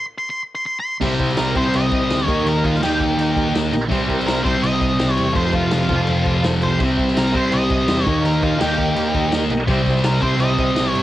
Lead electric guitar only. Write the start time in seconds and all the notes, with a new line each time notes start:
0.18 C6
0.30 C6
0.55 C6
0.66 C6
0.80 C6
1.38 A#4
1.57 C5
1.76 D#5
2.25 C#5
2.48 A#4
2.64 F4
2.83 G4
4.27 A#4
4.44 C5
4.63 D#5
5.13 C#5
5.36 C5
5.55 F4
5.73 F4
6.63 C5
7.18 A#4
7.37 C5
7.54 D#5
8.03 C#5
8.26 A#4
8.43 F4
8.62 G4
10.05 A#4
10.23 C5
10.40 D#5
10.90 C#5